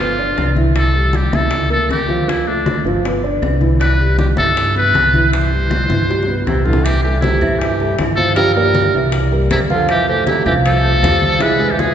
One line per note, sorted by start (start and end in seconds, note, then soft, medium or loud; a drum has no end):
0.00 0.34 G1 medium
0.00 0.15 B3 medium
0.00 0.58 F4 medium
0.00 0.15 B4 medium
0.00 high conga soft
0.18 0.50 D4 medium
0.18 0.50 D5 medium
0.18 high bongo soft
0.18 high conga soft
0.37 1.27 C2 medium
0.37 high bongo soft
0.37 low bongo medium
0.37 high conga soft
0.37 claves medium
0.56 0.88 E3 medium
0.56 0.88 E4 medium
0.56 high bongo soft
0.56 high conga medium
0.76 1.17 A4 medium
0.76 high bongo medium
0.76 high conga soft
0.76 claves medium
0.95 1.26 G3 medium
0.95 1.26 G4 medium
0.95 high conga soft
1.13 1.37 G4 medium
1.13 high bongo medium
1.13 high conga medium
1.32 1.86 C#2 medium
1.32 1.64 E4 medium
1.32 1.71 A4 medium
1.32 1.64 E5 medium
1.32 high bongo soft
1.32 high conga medium
1.32 claves medium
1.51 high bongo medium
1.51 high conga soft
1.70 2.02 A#3 medium
1.70 1.89 A4 medium
1.70 2.02 A#4 medium
1.70 high bongo soft
1.70 high conga soft
1.89 2.79 D2 medium
1.89 2.31 G4 medium
1.89 high bongo soft
1.89 low bongo medium
1.89 high conga medium
1.89 claves medium
2.08 2.24 F3 medium
2.08 2.24 F4 medium
2.08 high bongo soft
2.08 high conga medium
2.28 2.44 F3 medium
2.28 2.49 E4 medium
2.28 2.44 F4 medium
2.28 high bongo medium
2.28 high conga soft
2.47 2.79 A3 medium
2.47 2.85 D4 medium
2.47 2.78 A4 medium
2.47 high conga soft
2.66 high bongo medium
2.66 high conga medium
2.66 claves medium
2.84 3.38 G1 medium
2.84 3.01 F3 medium
2.84 3.01 F4 medium
2.84 high bongo soft
2.84 high conga soft
3.04 3.20 B3 medium
3.04 3.21 B4 medium
3.04 high bongo medium
3.04 high conga soft
3.23 3.55 D4 medium
3.23 3.55 D5 medium
3.23 high bongo soft
3.23 high conga soft
3.42 4.31 C2 medium
3.42 high bongo soft
3.42 low bongo medium
3.42 high conga soft
3.42 claves medium
3.61 3.92 E3 medium
3.61 3.92 E4 medium
3.61 high bongo soft
3.61 high conga medium
3.80 4.15 B4 medium
3.80 high bongo medium
3.80 high conga soft
3.80 claves medium
3.99 4.31 G3 medium
3.99 4.31 G4 medium
3.99 high conga soft
4.18 4.27 G4 medium
4.18 high bongo medium
4.18 high conga medium
4.37 4.90 G2 medium
4.37 4.68 E4 medium
4.37 4.73 A4 medium
4.37 4.69 E5 medium
4.37 high bongo soft
4.37 high conga medium
4.37 claves medium
4.56 high bongo medium
4.56 high conga soft
4.76 5.07 B3 medium
4.76 5.07 B4 medium
4.76 5.29 B4 loud
4.76 high bongo soft
4.76 high conga soft
4.94 5.83 C2 medium
4.94 high bongo soft
4.94 low bongo medium
4.94 high conga medium
4.94 claves medium
5.14 5.29 E3 medium
5.14 5.29 E4 medium
5.14 high bongo soft
5.14 high conga medium
5.32 5.48 E3 medium
5.32 5.48 E4 medium
5.32 6.43 C5 loud
5.32 high bongo medium
5.32 high conga soft
5.51 5.82 G3 medium
5.51 5.83 G4 medium
5.51 high conga soft
5.71 high bongo medium
5.71 high conga medium
5.71 claves medium
5.89 6.42 G2 medium
5.89 6.05 E3 medium
5.89 6.05 E4 medium
5.89 high bongo soft
5.89 high conga medium
6.09 6.24 G3 medium
6.09 6.24 G4 medium
6.09 high bongo medium
6.23 high bongo medium
6.28 6.59 B3 medium
6.28 6.59 B4 medium
6.46 7.36 C2 medium
6.46 6.67 C3 medium
6.46 6.66 E4 medium
6.46 low bongo medium
6.46 low conga medium
6.46 claves medium
6.64 6.85 D3 medium
6.64 6.81 E3 medium
6.64 6.81 E4 medium
6.64 6.85 F4 medium
6.64 low conga medium
6.73 low bongo medium
6.84 7.03 E3 medium
6.84 7.02 G4 medium
6.84 high bongo medium
6.84 high conga soft
6.84 claves medium
7.03 7.21 E3 medium
7.03 7.19 G3 medium
7.03 7.20 G4 medium
7.03 7.19 G4 medium
7.03 7.19 A4 medium
7.03 high bongo soft
7.03 high conga soft
7.21 7.61 C3 medium
7.21 7.38 G3 medium
7.21 7.60 E4 medium
7.21 7.39 G4 medium
7.21 7.39 A4 medium
7.21 high bongo medium
7.21 high conga medium
7.41 7.95 G2 medium
7.41 7.73 E3 medium
7.41 7.73 E4 medium
7.41 7.73 E5 medium
7.41 low conga medium
7.41 claves medium
7.59 7.98 E3 medium
7.59 7.98 G4 medium
7.59 high bongo medium
7.59 high conga soft
7.80 7.95 G3 medium
7.80 7.96 G4 medium
7.80 7.96 A4 medium
7.80 high bongo soft
7.80 high conga soft
7.99 8.88 G2 medium
7.99 8.30 E3 medium
7.99 8.30 E4 medium
7.99 8.30 E5 medium
7.99 high bongo medium
7.99 low bongo medium
7.99 high conga medium
7.99 claves medium
8.16 8.35 F3 medium
8.16 8.34 A4 medium
8.16 high bongo soft
8.16 high conga medium
8.35 8.53 F3 medium
8.35 8.54 G3 medium
8.35 8.53 F4 medium
8.35 8.54 A#4 loud
8.35 8.53 F5 medium
8.35 high bongo medium
8.35 high conga soft
8.54 9.09 G3 medium
8.54 8.87 A#3 medium
8.54 9.08 A#4 medium
8.54 8.87 A#4 medium
8.54 8.87 D5 medium
8.54 high bongo soft
8.54 high conga soft
8.74 high bongo medium
8.74 high conga medium
8.74 claves medium
8.94 9.47 C2 medium
8.94 9.25 E3 medium
8.94 9.25 E4 medium
8.94 9.26 E5 medium
8.94 high conga soft
9.12 high bongo medium
9.12 high conga soft
9.31 9.47 G3 medium
9.31 9.47 G4 medium
9.31 9.47 A#4 medium
9.31 high bongo soft
9.31 high conga soft
9.51 10.40 F2 medium
9.51 9.60 C3 medium
9.51 9.66 G3 medium
9.51 9.59 E4 medium
9.51 9.67 G4 medium
9.51 9.67 A#4 medium
9.51 high bongo medium
9.51 low bongo medium
9.51 high conga medium
9.51 claves medium
9.70 9.89 D3 medium
9.70 10.01 F3 medium
9.70 9.88 F4 medium
9.70 10.01 F4 medium
9.70 10.01 F5 medium
9.70 high bongo soft
9.70 high conga medium
9.89 10.08 E3 medium
9.89 10.07 G4 loud
9.89 high bongo medium
9.89 high conga soft
9.89 claves medium
10.08 10.27 E3 medium
10.08 10.24 A3 medium
10.08 10.26 G4 medium
10.08 10.24 A4 medium
10.08 10.24 C5 medium
10.08 high bongo soft
10.08 high conga soft
10.26 10.45 C3 medium
10.26 10.43 A3 medium
10.26 10.44 E4 medium
10.26 10.43 A4 medium
10.26 10.43 C5 medium
10.26 high bongo medium
10.26 high conga medium
10.45 10.99 C2 medium
10.45 10.55 E3 medium
10.45 10.77 F3 medium
10.45 10.77 F4 medium
10.45 10.54 G4 medium
10.45 10.77 F5 medium
10.45 low conga medium
10.45 claves medium
10.65 11.44 F3 medium
10.65 11.43 A4 loud
10.65 high bongo medium
10.65 high conga soft
10.84 11.00 A3 medium
10.84 11.00 A4 medium
10.84 11.00 C5 medium
10.84 high bongo soft
10.84 high conga soft
11.02 11.92 E2 medium
11.02 11.34 G3 medium
11.02 11.34 F4 medium
11.02 11.34 F5 medium
11.02 high bongo medium
11.02 low bongo medium
11.02 high conga medium
11.02 claves medium
11.22 high bongo soft
11.22 high conga medium
11.40 11.56 E3 medium
11.40 11.75 G#3 medium
11.40 11.56 E4 medium
11.40 11.72 B4 loud
11.40 11.56 E5 medium
11.40 high bongo medium
11.40 high conga soft
11.59 11.90 G#3 medium
11.59 11.91 G#4 medium
11.59 11.91 B4 medium
11.59 high bongo soft
11.59 high conga soft
11.71 11.81 E3 medium
11.71 11.81 G4 medium
11.79 11.94 E3 medium
11.79 11.94 G#4 medium
11.79 high bongo medium
11.79 high conga medium
11.79 claves medium